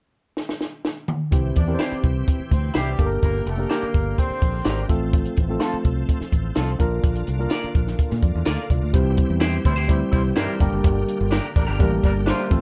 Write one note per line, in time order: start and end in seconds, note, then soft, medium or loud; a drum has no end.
0.37 snare medium
0.49 snare medium
0.61 snare medium
0.85 snare medium
1.08 mid tom medium
1.31 1.50 C2 loud
1.31 2.97 E3 medium
1.31 1.59 C4 medium
1.31 2.97 C4 medium
1.31 1.59 E4 medium
1.31 4.86 G4 medium
1.31 1.60 G4 medium
1.31 1.60 C5 medium
1.31 kick loud
1.31 closed hi-hat loud
1.56 1.74 E2 medium
1.56 2.01 D4 medium
1.56 2.01 D5 medium
1.56 kick medium
1.56 closed hi-hat medium
1.67 2.41 C4 medium
1.67 2.41 E4 medium
1.67 2.41 G4 medium
1.67 1.74 A#4 medium
1.75 2.44 C5 medium
1.79 1.93 E4 medium
1.79 1.94 G4 medium
1.79 1.94 C5 medium
1.79 snare medium
1.79 closed hi-hat medium
1.92 muted fingered electric bass stroke soft
2.04 2.22 C2 medium
2.04 kick medium
2.04 closed hi-hat medium
2.28 kick medium
2.28 closed hi-hat medium
2.40 muted fingered electric bass stroke soft
2.51 2.69 D2 medium
2.51 2.70 C4 medium
2.51 2.70 C5 medium
2.51 kick medium
2.51 closed hi-hat medium
2.74 2.93 C2 medium
2.74 3.09 G3 medium
2.74 2.88 E4 medium
2.74 2.89 G4 medium
2.74 3.09 G4 loud
2.74 2.89 C5 medium
2.74 snare loud
2.74 closed hi-hat medium
2.99 3.17 G1 medium
2.99 4.88 D3 medium
2.99 3.46 A#3 medium
2.99 4.88 A#3 medium
2.99 3.47 D4 medium
2.99 3.47 G4 medium
2.99 3.05 A4 medium
2.99 kick medium
2.99 closed hi-hat medium
3.06 3.50 A#4 medium
3.22 3.41 G1 loud
3.22 3.42 A#3 loud
3.22 3.41 A#4 loud
3.22 kick loud
3.22 closed hi-hat medium
3.46 3.64 F1 medium
3.46 3.65 A3 medium
3.46 3.66 A4 medium
3.46 closed hi-hat medium
3.57 4.31 A#3 medium
3.57 4.32 D4 medium
3.57 4.32 G4 medium
3.57 4.32 A#4 medium
3.70 4.15 A#3 medium
3.70 3.84 D4 medium
3.70 3.84 G4 medium
3.70 4.15 A#4 loud
3.70 3.85 A#4 medium
3.70 snare loud
3.70 closed hi-hat medium
3.83 muted fingered electric bass stroke soft
3.94 4.12 G1 medium
3.94 kick medium
3.94 closed hi-hat medium
4.17 4.85 C4 medium
4.17 4.85 C5 loud
4.17 kick medium
4.17 closed hi-hat medium
4.30 muted fingered electric bass stroke soft
4.42 4.60 A#1 medium
4.42 kick medium
4.42 closed hi-hat medium
4.65 4.84 G#1 medium
4.65 4.79 D4 medium
4.65 4.80 G4 medium
4.65 4.80 A#4 medium
4.65 snare loud
4.65 closed hi-hat medium
4.78 closed hi-hat soft
4.88 5.25 A1 medium
4.88 6.79 F3 medium
4.88 5.37 A3 medium
4.88 5.37 C4 medium
4.88 6.78 C4 medium
4.88 5.37 F4 medium
4.88 6.78 A4 medium
4.88 5.37 A4 medium
4.88 kick medium
4.88 closed hi-hat medium
5.13 kick loud
5.13 closed hi-hat loud
5.25 closed hi-hat medium
5.36 5.55 A1 loud
5.36 kick medium
5.36 closed hi-hat medium
5.49 6.22 A3 medium
5.49 6.22 C4 medium
5.49 6.23 F4 medium
5.49 6.23 A4 medium
5.60 5.74 C4 medium
5.60 5.75 F4 medium
5.60 5.75 A4 loud
5.60 snare loud
5.60 closed hi-hat medium
5.74 muted fingered electric bass stroke soft
5.85 6.03 C2 medium
5.85 kick medium
5.85 closed hi-hat medium
6.09 kick medium
6.09 closed hi-hat medium
6.20 muted fingered electric bass stroke soft
6.20 snare soft
6.32 6.51 A1 medium
6.32 kick medium
6.32 closed hi-hat medium
6.56 6.75 C2 medium
6.56 6.70 C4 medium
6.56 6.70 F4 medium
6.56 6.70 A4 medium
6.56 snare loud
6.56 closed hi-hat medium
6.68 closed hi-hat soft
6.79 6.98 A#1 medium
6.79 8.92 D3 medium
6.79 7.27 A#3 medium
6.79 8.92 A#3 medium
6.79 7.27 D4 medium
6.79 8.92 F4 medium
6.79 7.28 F4 medium
6.79 7.28 A#4 loud
6.79 kick medium
6.79 closed hi-hat medium
7.03 7.22 A#1 medium
7.03 kick loud
7.03 closed hi-hat medium
7.15 closed hi-hat medium
7.27 7.46 C2 medium
7.27 closed hi-hat medium
7.39 8.12 A#3 medium
7.39 8.13 D4 medium
7.39 8.13 F4 medium
7.39 8.13 A#4 medium
7.50 7.65 F4 medium
7.50 7.65 A#4 medium
7.50 7.65 D5 medium
7.50 snare loud
7.50 closed hi-hat medium
7.64 muted fingered electric bass stroke soft
7.75 7.93 A#1 medium
7.75 kick medium
7.75 closed hi-hat medium
7.87 snare soft
7.99 kick medium
7.99 closed hi-hat medium
8.10 8.21 A#2 medium
8.10 snare soft
8.23 8.32 F2 medium
8.23 8.46 F4 soft
8.23 8.46 D5 medium
8.23 kick medium
8.23 closed hi-hat medium
8.35 8.44 E2 medium
8.45 8.56 D2 medium
8.45 8.60 F4 medium
8.45 8.70 A4 medium
8.45 8.60 A#4 medium
8.45 8.61 D5 medium
8.45 8.69 F5 medium
8.45 snare loud
8.45 closed hi-hat medium
8.70 8.79 C2 medium
8.70 9.16 F4 medium
8.70 9.16 D5 medium
8.70 kick medium
8.70 closed hi-hat medium
8.82 8.91 D2 medium
8.93 9.21 C2 loud
8.93 10.59 E3 medium
8.93 9.67 G3 medium
8.93 10.59 C4 medium
8.93 9.67 C4 medium
8.93 9.67 E4 medium
8.93 12.47 G4 medium
8.93 9.67 G4 medium
8.93 9.68 C5 medium
8.93 kick loud
8.93 closed hi-hat medium
9.17 kick medium
9.17 closed hi-hat medium
9.30 9.57 E2 medium
9.40 9.55 E4 medium
9.40 9.55 G4 medium
9.40 9.56 C5 medium
9.40 snare loud
9.40 closed hi-hat loud
9.65 10.01 D2 medium
9.65 9.73 G3 medium
9.65 9.73 E4 medium
9.65 9.73 C5 loud
9.65 kick medium
9.65 closed hi-hat medium
9.76 9.89 E4 medium
9.76 9.88 G4 medium
9.76 9.88 C5 medium
9.88 9.99 G3 medium
9.88 10.59 G3 medium
9.88 10.61 C4 medium
9.88 9.99 E4 medium
9.88 10.61 E4 medium
9.88 10.60 G4 medium
9.88 9.99 C5 medium
9.88 10.61 C5 loud
9.88 kick medium
9.88 closed hi-hat medium
10.12 10.31 C2 medium
10.12 10.20 G3 medium
10.12 10.20 E4 medium
10.12 10.20 C5 loud
10.12 kick medium
10.12 closed hi-hat medium
10.36 10.46 G2 medium
10.36 10.71 G3 medium
10.36 10.71 D4 medium
10.36 10.50 E4 medium
10.36 10.51 G4 medium
10.36 10.71 A#4 loud
10.36 10.51 C5 medium
10.36 snare loud
10.36 closed hi-hat medium
10.60 10.70 G1 loud
10.60 12.49 D3 medium
10.60 11.37 G3 medium
10.60 12.49 A#3 medium
10.60 11.37 A#3 medium
10.60 11.37 D4 medium
10.60 11.37 G4 medium
10.60 11.37 A#4 loud
10.60 kick medium
10.60 closed hi-hat medium
10.72 10.82 F#1 medium
10.84 11.03 G1 loud
10.84 kick loud
10.84 closed hi-hat loud
11.08 closed hi-hat medium
11.21 11.38 G1 loud
11.31 11.45 D4 medium
11.31 11.46 G4 medium
11.31 11.46 A#4 medium
11.31 snare loud
11.31 closed hi-hat loud
11.56 11.65 A1 medium
11.56 11.64 G3 loud
11.56 11.63 D4 loud
11.56 11.63 A#4 loud
11.56 kick medium
11.56 closed hi-hat medium
11.67 11.77 G1 medium
11.67 11.79 D4 medium
11.67 11.79 G4 medium
11.67 11.78 A#4 medium
11.79 11.98 A1 loud
11.79 12.51 G3 medium
11.79 11.90 G3 medium
11.79 12.51 A#3 medium
11.79 11.90 D4 medium
11.79 12.51 D4 medium
11.79 12.51 G4 medium
11.79 11.90 A#4 medium
11.79 12.52 A#4 medium
11.79 kick loud
11.79 closed hi-hat medium
12.03 12.31 G1 loud
12.03 12.11 G3 medium
12.03 12.11 D4 medium
12.03 12.11 A#4 loud
12.03 kick medium
12.03 closed hi-hat medium
12.26 12.61 A3 medium
12.26 12.41 D4 medium
12.26 12.61 F4 medium
12.26 12.41 G4 loud
12.26 12.41 A#4 loud
12.26 12.61 C5 loud
12.26 snare loud
12.26 closed hi-hat loud
12.50 12.60 A1 loud
12.50 12.61 F3 medium
12.50 12.61 A3 medium
12.50 12.61 C4 medium
12.50 12.61 F4 medium
12.50 12.61 A4 medium
12.50 12.61 A4 loud
12.50 kick medium
12.50 closed hi-hat medium